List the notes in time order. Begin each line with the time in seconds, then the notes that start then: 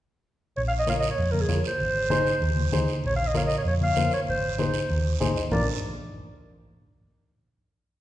0.56 A#1 C#5, long guiro
0.68 F5
0.79 D#5
0.87 F4 A#4 C#5 F5, high conga, short guiro
0.99 D#5, short guiro
1.11 C#5
1.18 F2, long guiro
1.31 A#4, high conga
1.41 G#4
1.48 F2 F4 A#4 C#5, high conga, short guiro
1.64 C5, short guiro
1.80 G#1, long guiro
2.10 D#4 G#4 C5, high conga, short guiro
2.27 short guiro
2.42 D#2, long guiro
2.56 high conga
2.72 D#2 D#4 G#4 C5, high conga, short guiro
2.88 short guiro
3.04 A#1 C#5, long guiro
3.16 F5
3.27 D#5
3.34 F4 A#4 C#5 F5, high conga, short guiro
3.47 D#5, short guiro
3.58 C#5
3.65 F2 C#5, long guiro
3.81 F5, high conga
3.96 F2 F4 A#4 C5, high conga, short guiro
4.11 C#5, short guiro
4.27 G#1 C5, long guiro
4.58 D#4 G#4 C5, high conga, short guiro
4.74 short guiro
4.90 D#2, long guiro
5.20 G#1 D#4 G#4 C5 G#5, high conga, short guiro
5.36 D#5, short guiro
5.51 A#1 D4 F4 A#4 D5, low conga, long guiro